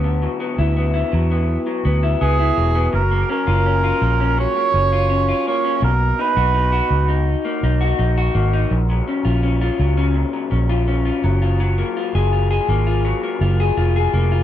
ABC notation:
X:1
M:4/4
L:1/16
Q:1/4=83
K:F#
V:1 name="Cor anglais"
z12 G4 | A2 A6 c6 c2 | A2 B6 z8 | z16 |
z16 |]
V:2 name="Clean electric guitar"
[=D,B,] F, B, =E B, E F, B,2 F, B, E B, E F, B, | F, A, C E C E A, C F, A, C E C E A, C | B,,2 D F D F2 D2 A, D F D F A, D | A,, F, C E C E F, C A,, F, C E C E F, E |
F, A, E G E G A, E F, A, E G E G A, E |]
V:3 name="Fingered electric bass" clef=bass
=D,,2 z D,,3 =E,,3 z D,,2 C,,2 =E,,,2 | F,,,2 z F,,,3 A,,,3 z F,,,4 z2 | B,,,2 z B,,,3 C,,3 z B,,,2 A,,,2 G,,,2 | A,,,2 z A,,,3 C,,3 z A,,,4 F,,,2- |
F,,,2 z F,,,3 G,,,3 z F,,,2 E,,,2 E,,,2 |]